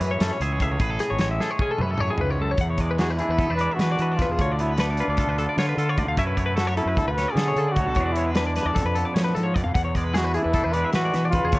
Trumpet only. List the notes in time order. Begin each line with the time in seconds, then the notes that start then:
3.00 F#4
3.17 E4
3.56 B4
3.75 F#4
4.17 F4
4.59 E4
4.76 D4
6.58 F#4
6.77 E4
7.11 B4
7.31 G#4
7.72 F#4
8.12 E4
8.33 D4
10.16 F#4
10.36 E4
10.73 B4
10.93 F#4
11.29 F4